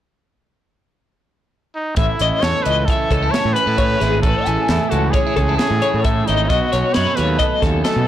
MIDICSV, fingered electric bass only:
0, 0, Header, 1, 2, 480
1, 0, Start_track
1, 0, Tempo, 451807
1, 2100, Time_signature, 5, 2, 24, 8
1, 8580, End_track
2, 0, Start_track
2, 0, Title_t, "Fingered electric bass"
2, 0, Program_c, 0, 33
2, 2095, Note_on_c, 0, 33, 91
2, 2196, Note_off_c, 0, 33, 0
2, 2343, Note_on_c, 0, 33, 79
2, 2440, Note_off_c, 0, 33, 0
2, 2579, Note_on_c, 0, 40, 82
2, 2678, Note_off_c, 0, 40, 0
2, 2828, Note_on_c, 0, 37, 69
2, 3022, Note_off_c, 0, 37, 0
2, 3299, Note_on_c, 0, 37, 86
2, 3497, Note_off_c, 0, 37, 0
2, 3666, Note_on_c, 0, 45, 93
2, 3762, Note_off_c, 0, 45, 0
2, 3896, Note_on_c, 0, 45, 78
2, 4193, Note_off_c, 0, 45, 0
2, 4264, Note_on_c, 0, 32, 85
2, 4460, Note_off_c, 0, 32, 0
2, 4504, Note_on_c, 0, 33, 93
2, 4601, Note_off_c, 0, 33, 0
2, 4750, Note_on_c, 0, 33, 77
2, 4845, Note_off_c, 0, 33, 0
2, 4982, Note_on_c, 0, 40, 87
2, 5081, Note_off_c, 0, 40, 0
2, 5227, Note_on_c, 0, 37, 74
2, 5422, Note_off_c, 0, 37, 0
2, 5708, Note_on_c, 0, 37, 90
2, 5902, Note_off_c, 0, 37, 0
2, 6062, Note_on_c, 0, 45, 87
2, 6160, Note_off_c, 0, 45, 0
2, 6310, Note_on_c, 0, 45, 73
2, 6601, Note_off_c, 0, 45, 0
2, 6682, Note_on_c, 0, 32, 89
2, 6870, Note_off_c, 0, 32, 0
2, 6911, Note_on_c, 0, 35, 96
2, 7005, Note_off_c, 0, 35, 0
2, 7155, Note_on_c, 0, 35, 85
2, 7247, Note_off_c, 0, 35, 0
2, 7401, Note_on_c, 0, 42, 82
2, 7491, Note_off_c, 0, 42, 0
2, 7635, Note_on_c, 0, 39, 71
2, 7825, Note_off_c, 0, 39, 0
2, 8100, Note_on_c, 0, 39, 87
2, 8296, Note_off_c, 0, 39, 0
2, 8458, Note_on_c, 0, 47, 90
2, 8556, Note_off_c, 0, 47, 0
2, 8580, End_track
0, 0, End_of_file